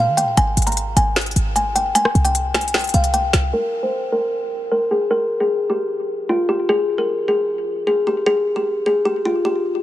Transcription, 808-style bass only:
0.08 D#3
0.23 A#2
0.37 G#1
0.57 G#1
0.97 G#1
1.36 G#1
2.15 C2
2.94 C2
3.33 C2

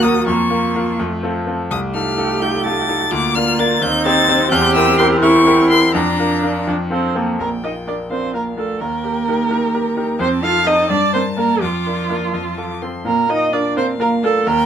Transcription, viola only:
Already playing: A#3
0.28 A#3
1.00 A3
1.71 A3
3.12 A#3
3.83 C4
5.94 D4
6.67 D4
6.91 C4
7.16 A#3
7.40 A#4
7.64 D#5
7.88 D5
8.11 C5
8.35 A#4
8.58 A4
8.81 A#4
10.20 C5
10.43 F5
10.67 D#5
10.90 D5
11.14 C5
11.38 A#4
11.62 F4
13.06 A#4
13.30 D#5
13.53 D5
13.77 C5
14.01 A#4
14.24 A4
14.47 A#4

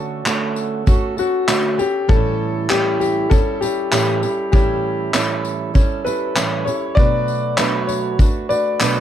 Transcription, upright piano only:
Already playing: A4
1.19 F#4
1.79 G4
2.09 A4
2.69 G4
3.00 G4
3.30 A4
3.61 G4
3.91 G4
4.52 G4
6.04 B4
6.65 C#5
6.95 D5
7.56 C#5
7.87 C#5
8.49 D5

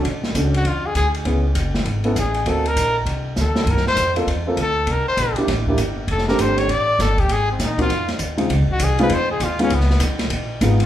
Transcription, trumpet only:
0.56 F#4
0.67 F4
0.86 G#4
0.97 G#4
2.19 G#4
2.50 A4
2.68 A#4
3.41 A4
3.70 A#4
3.88 C5
4.62 A4
4.91 A#4
5.08 C5
6.11 A4
6.28 A#4
6.41 C5
6.58 C#5
6.71 D5
7.01 A4
7.20 G4
7.32 G#4
7.51 C4
7.63 D#4
7.81 F4
8.72 F#4
8.84 G#4
9.02 B4
9.14 C5
9.31 G#4
9.43 F4
9.63 C#4
9.74 B3

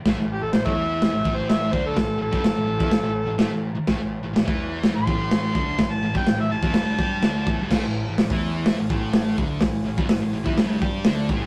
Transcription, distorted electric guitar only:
0.06 A2 A3
0.19 A2
0.43 A2
0.55 A2
0.66 E3 E4
1.13 A2
1.24 A2 A3
1.72 D3 D4
1.95 A2
2.18 A2
2.31 G2 G3
2.43 A2
2.55 A2
2.67 A2
2.80 E3 E4
2.91 A2
3.03 A2
3.27 A2
3.38 A2 A3
3.51 A2
3.75 muted distorted electric guitar stroke
3.88 A2 A3
3.99 A2
4.23 A2
4.34 A2
4.45 E3 E4
4.94 A2
5.06 A2 A3
5.55 D3 D4
5.79 A2
6.02 A2
6.13 G2 G3
6.27 A2
6.39 A2
6.50 A2
6.63 E3 E4
6.75 G2 G3
6.99 G3 G4
7.23 D3 D4
7.47 A2 A3
7.61 G2 G3
7.72 A2 A3
7.84 A2
8.09 A2
8.20 A2
8.32 E3 E4
8.78 A2
8.89 A2 A3
9.38 D3 D4
9.62 A2
9.85 A2
9.97 G2 G3
10.09 A2
10.22 A2
10.33 A2
10.44 E3 E4
10.57 G2 G3
10.81 G3 G4
11.06 D3 D4
11.30 A2 A3
11.41 G2 G3

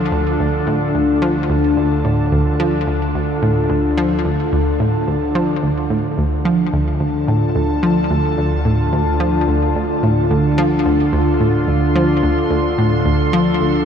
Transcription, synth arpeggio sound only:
0.12 D2
0.39 D2
0.67 A2
0.94 D2
1.22 F3
1.50 D2
1.77 D2
2.05 A2
2.32 D2
2.60 F3
2.87 D2
3.15 D2
3.42 A2
3.70 D2
3.98 F3
4.25 D2
4.52 D2
4.80 A2
5.08 D2
5.35 F3
5.63 D2
5.90 A2
6.18 D2
6.45 F3
6.73 D2
7.00 D2
7.28 A2
7.55 D2
7.83 F3
8.10 D2
8.38 D2
8.65 A2
8.93 D2
9.20 F3
9.48 D2
9.75 D2
10.03 A2
10.30 D2
10.58 F3
10.85 D2
11.13 D2
11.40 A2
11.68 D2
11.95 F3
12.23 D2
12.51 D2
12.78 A2
13.06 D2
13.33 F3
13.61 D2

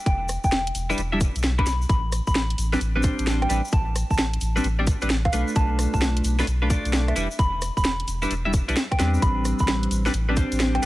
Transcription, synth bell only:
0.06 G5
0.44 G5
1.58 B5
1.89 B5
2.27 B5
3.42 G5
3.73 A5
4.11 A5
5.25 F5
5.56 A5
5.93 A5
7.08 E5
7.39 B5
7.77 B5
8.91 G5
9.22 B5
9.60 B5
10.75 G5

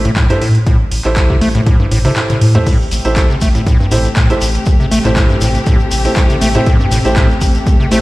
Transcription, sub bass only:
0.42 A2
0.92 A1
1.05 A1
1.41 A1
1.92 A1
2.41 A2
2.91 A1
3.05 A1
3.42 A1
3.92 A1
4.42 A1
4.92 A1
5.05 A1
5.41 A1
5.92 A1
6.42 A1
6.92 A1
7.05 A1
7.41 A1
7.92 A1

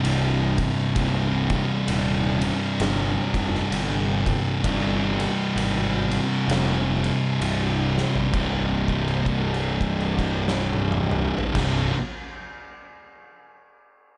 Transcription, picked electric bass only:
0.04 C1
0.96 C1
1.88 D#1
2.80 G1
3.34 F1
3.71 G1
4.64 G1
5.55 G#1
6.48 F1
7.41 C1
8.33 C1
11.55 C1

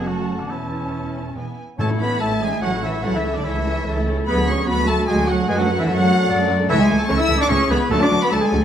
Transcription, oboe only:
0.07 F#4
0.40 D4
0.51 E4
1.80 A4
2.01 B4
2.21 A4
2.42 G#4
2.62 F#4
2.84 E4
3.03 F#4
3.14 E4
3.34 D4
3.44 E4
4.27 B4
4.47 C#5
4.67 B4
4.87 A4
5.07 G#4
5.28 F#4
5.49 G#4
5.58 F#4
5.79 E4
5.89 F#4
6.70 E4
6.80 G#4
6.99 A4
7.09 C#5
7.17 E5
7.38 D5
7.48 C#5
7.71 B4
7.91 A4
8.01 D5
8.22 B4
8.31 A4
8.41 G#4
8.61 F#4

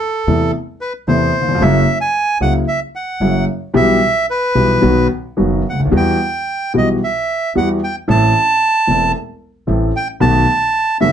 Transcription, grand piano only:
0.27 E2 C3 E3 A3 B3 E4
1.07 E2 C3 E3 A3 B3 E4
1.41 D#2
1.48 E2
1.55 F2
1.62 F#2 C#3 F#3 A#3 E4
2.41 C#2 C#3 F#3 A#3 E4
3.21 F#2 C#3 F#3 A#3 E4
3.74 B1 B2 E3 G3 B3 G4
4.55 B1 B2 E3 G3 B3 G4
4.82 B1 B2 D#3 F#3 B3 F#4
5.37 F#1 F#2 D#3 F#3 B3 F#4
5.72 C#2
5.80 D2
5.86 D#2
5.91 E2 E3 G3 B3 F#4
6.74 B1 B2 E3 G3 B3 F#4
7.55 E2 E3 G3 B3 F#4
8.08 A1 A2 E3 A3 C4 A4
8.87 E1 E2 E3 A3 C4 A4
9.67 A1 A2 E3 A3 C4 A4
10.20 B1 B2 D#3 A3 B3 F#4
11.00 F#1 F#2 D#3 A3 B3 F#4

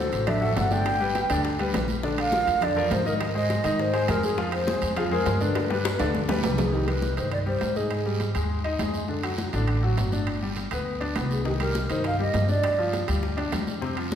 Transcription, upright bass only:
0.12 A1
0.56 G1
1.30 D2
1.74 A#1
2.47 F2
2.91 G#2
3.65 G#2
4.08 F2
4.82 F2
5.26 G2
6.00 D2
6.44 C2
7.17 G2
7.62 G#2
8.35 D#2
8.79 F#2
9.53 A1
9.98 G1
10.71 D2
11.16 C2
11.90 G2
12.34 G2
13.08 D2
13.53 F2

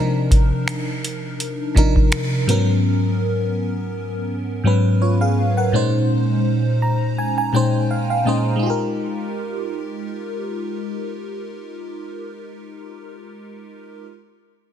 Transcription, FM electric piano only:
Already playing: C3 F3 D4 D#4 A#4
1.75 C3 F3 D4 D#4 A#4
2.47 G#2 F#3 B3 C#4 A#4
4.64 G#2 F#3 B3 C#4 B4
5.02 F4 C#5
5.21 G#4 F5
5.57 A#4 F#5
5.72 A#2 G#3 C#4 D#4 C5
6.82 A#5
7.18 G#5
7.38 G#5
7.53 A#2 G#3 C#4 D#4 C5 G5
7.91 F5
8.10 F5
8.25 A#2 G#3 C#4 D#4 C5 D#5
8.56 G#3 D#4
8.63 F4 G4
8.70 A#4

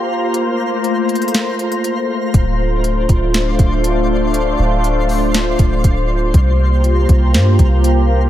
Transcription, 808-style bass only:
2.34 D1
3.09 D1
3.59 D1
4.59 D1
5.59 D1
5.84 D1
6.34 C2
7.09 C2
7.34 G2
7.59 C2

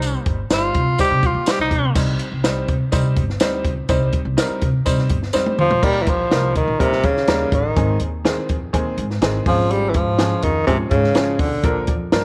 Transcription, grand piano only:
Already playing: G3 D#4 C5
0.51 G3 D#4 C5
0.99 G3 D#4 C5
1.47 G3 D#4 C5
1.95 G3 C4 D#4 C5
2.44 G3 C4 D#4 C5
2.92 G3 C4 D#4 C5
3.41 G3 C4 D#4 C5
3.89 G3 C4 D#4 C5
4.37 G3 C4 D#4 A#4
4.85 G3 C4 D#4 C5
5.33 G3 C4 D#4 C5
5.82 G3 A#3 D#4 A#4
6.31 G3 A#3 D#4 A#4
6.79 G3 A#3 D#4 A#4
7.28 G3 A#3 D#4 A#4
7.76 D#3 G#3 C4 G#4
8.25 D#3 G#3 C4 G#4
8.73 D#3 G#3 C4 G#4
9.22 D#3 G#3 C4 G#4
9.47 F3 G#3 C#4 G#4
10.19 F3 G#3 C#4 G#4
10.67 F3 G#3 C#4 G#4
11.16 F3 G#3 C#4 G#4
11.64 F3 A#3 D4 A#4
12.12 F3 A#3 D4 A#4

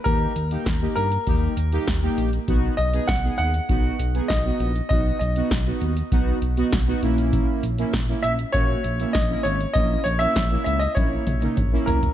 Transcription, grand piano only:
0.04 A#4
0.96 A#4
2.77 D#5
3.08 F#5
3.38 F#5
4.28 D#5
4.89 D#5
5.19 D#5
8.23 E5
8.52 C#5
9.13 D#5
9.43 C#5
9.73 D#5
10.04 C#5
10.19 E5
10.64 E5
10.79 D#5
10.95 C#5
11.86 A#4

